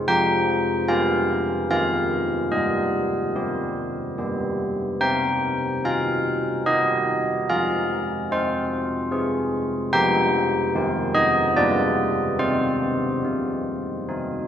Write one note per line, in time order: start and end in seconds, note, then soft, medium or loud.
0.08 1.66 F3 medium
0.08 0.86 G5 medium
0.88 1.66 B3 soft
0.88 1.67 G4 soft
0.88 1.67 F5 medium
1.70 2.50 D#3 soft
1.70 2.49 C4 soft
1.70 2.49 G4 soft
1.70 2.50 F5 medium
2.52 4.15 G3 soft
2.52 4.15 D#5 medium
3.36 4.15 C4 soft
3.36 4.15 G4 soft
4.18 5.00 G3 soft
4.18 4.98 B3 soft
4.18 4.98 G4 soft
5.01 7.46 C4 soft
5.01 5.82 G5 medium
5.84 6.66 D#4 soft
5.84 6.65 F5 medium
6.66 7.45 D#4 soft
6.66 7.45 G4 soft
6.66 7.46 D#5 medium
7.50 9.90 F3 medium
7.50 8.28 F5 medium
8.31 9.10 C4 soft
8.31 9.50 C5 medium
9.12 9.89 C4 soft
9.12 9.90 G#4 soft
9.93 10.73 F3 medium
9.93 10.71 B3 soft
9.93 10.71 G4 soft
9.93 11.11 G5 medium
10.75 11.54 D#3 medium
10.75 11.53 C4 soft
10.75 11.53 G4 soft
11.15 11.55 D#5 medium
11.57 12.38 G3 soft
11.57 12.36 B3 soft
11.57 12.37 F4 soft
11.57 12.37 D5 medium
12.39 13.24 C4 medium
12.39 14.04 C5 medium
13.25 14.07 C4 soft
14.09 14.47 C4 soft
14.09 14.47 D#4 soft